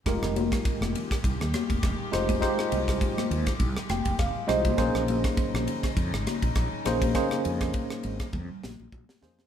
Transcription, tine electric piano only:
X:1
M:4/4
L:1/8
Q:"Swing 16ths" 1/4=102
K:Fm
V:1 name="Tine electric piano"
[A,EFGB]4 z3 [A,EFGc] | [A,EFGc]4 z g f [A,EFGce] | [B,DEAc]4 z3 [B,DEAc] | [B,DEAc]4 z3 [B,DEAc] |]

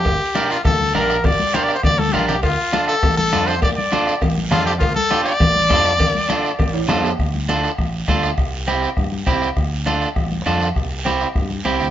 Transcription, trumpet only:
X:1
M:4/4
L:1/8
Q:1/4=202
K:Dm
V:1 name="Trumpet"
G3 F A2 B2 | d2 (3c d c d A F G | F3 A2 A2 c | d d3 z2 F G |
F A2 d4- d- | d6 z2 | z8 | z8 |
z8 | z8 |]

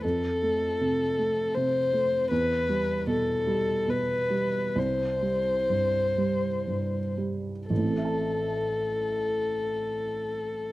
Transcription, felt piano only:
X:1
M:3/4
L:1/8
Q:1/4=66
K:Am
V:1 name="Felt piano" clef=bass
F,, A, C, A, C, A, | E,, G, B,, G, B,, G, | C,, G, G,, G, G,, G, | [A,,,A,,CAea]6 |]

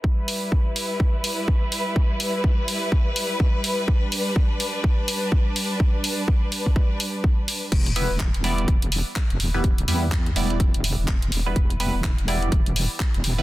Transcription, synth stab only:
X:1
M:4/4
L:1/16
Q:"Swing 16ths" 1/4=125
K:Em
V:1 name="Synth stab"
z16 | z16 | z16 | z16 |
z2 [G,B,EB] z3 [G,B,Ed]2 z6 z [G,B,EB] | z2 [G,B,EB] z3 [G,B,Ed]2 z6 z [G,B,EB] | z2 [G,B,EB] z3 [G,B,Ed]2 z6 z [G,B,EB] |]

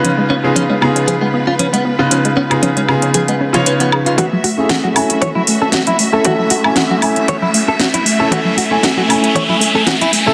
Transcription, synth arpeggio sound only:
X:1
M:4/4
L:1/16
Q:"Swing 16ths" 1/4=116
K:F#dor
V:1 name="Synth arpeggio sound" clef=bass
^E, G, B, C E, G, B, C E, G, B, C E, G, B, C | ^E, G, B, C E, G, B, C E, G, C E, B E, G ^E | E, F, A, C E, F, A, C E, F, A, C E, F, A, C | E, F, A, C E, F, A, C E, F, A, C E, F, A, C |
E, F, A, C E, F, A, C E, F, A, C E, F, A, C |]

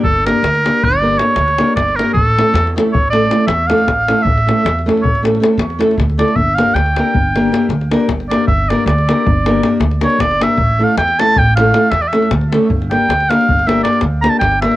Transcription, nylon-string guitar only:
X:1
M:11/8
L:1/8
Q:1/4=156
K:none
V:1 name="Nylon-string guitar"
z [_B,DG_B] z [B,DGB] z [B,DGB] [B,DGB] z [B,DGB] z [B,DGB] | z [A,^CEA] z [A,CEA] z [A,CEA] [A,CEA] z [A,CEA] z [A,CEA] | z [A,^CEA] z [A,CEA] z [A,CEA] [A,CEA] z [A,CEA] z [A,CEA] | z [_B,DG_B] z [B,DGB] z [B,DGB] [B,DGB] z [B,DGB] z [B,DGB] |
z [_B,DG_B] z [B,DGB] z [B,DGB] [B,DGB] z [B,DGB] z [B,DGB] | z [A,^CEA] z [A,CEA] z [A,CEA] [A,CEA] z [A,CEA] z [A,CEA] | z [_B,DG_B] z [B,DGB] z [B,DGB] [B,DGB] z [B,DGB] z [B,DGB] |]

